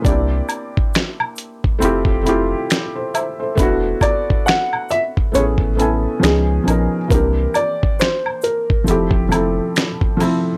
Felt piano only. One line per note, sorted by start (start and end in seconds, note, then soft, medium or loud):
0.02 1.15 A#3 medium
0.02 1.16 C4 medium
0.02 1.17 D4 medium
0.06 1.17 E4 medium
0.06 1.18 G4 medium
1.79 2.17 A3 medium
1.79 2.18 C4 medium
1.79 2.18 E4 medium
1.83 2.19 F4 medium
1.83 2.20 G4 loud
2.23 2.80 A3 medium
2.23 2.81 C4 medium
2.23 2.81 E4 medium
2.27 2.82 F4 medium
2.27 2.83 G4 medium
2.96 3.13 A4 medium
2.96 3.13 C5 medium
3.14 3.38 C5 medium
3.14 3.38 E5 medium
3.40 3.82 A4 medium
3.40 3.81 C5 medium
3.55 4.68 A3 medium
3.55 4.69 B3 medium
3.55 4.70 D4 medium
3.60 4.71 E4 medium
3.60 4.71 F#4 loud
5.32 5.70 A3 medium
5.32 5.71 B3 medium
5.32 5.71 C#4 medium
5.36 5.72 E4 medium
5.36 5.73 G#4 medium
5.75 6.21 A3 medium
5.75 6.20 B3 medium
5.75 6.21 C#4 medium
5.80 6.23 E4 medium
5.80 6.24 G#5 medium
6.19 6.58 F3 medium
6.19 6.59 B3 medium
6.19 6.59 C#4 medium
6.24 6.60 D#4 medium
6.24 6.61 G#4 medium
6.64 6.95 F3 medium
6.64 6.96 B3 medium
6.64 6.97 C#4 medium
6.68 6.97 D#4 medium
6.68 6.98 A#4 medium
7.08 8.21 E3 medium
7.08 8.22 A#3 medium
7.08 8.22 C4 medium
7.13 8.23 D4 medium
7.13 8.24 G4 medium
8.84 9.22 F3 medium
8.84 9.23 A3 medium
8.84 9.24 C4 medium
8.89 9.25 E4 medium
8.89 9.26 G4 medium
9.29 9.86 F3 medium
9.29 9.87 A3 medium
9.29 9.87 C4 medium
9.33 9.88 E4 medium
9.33 9.89 A4 medium
10.17 10.48 F3 medium
10.17 10.49 A3 medium
10.17 10.50 C4 medium
10.22 10.50 E4 medium
10.22 10.51 A4 medium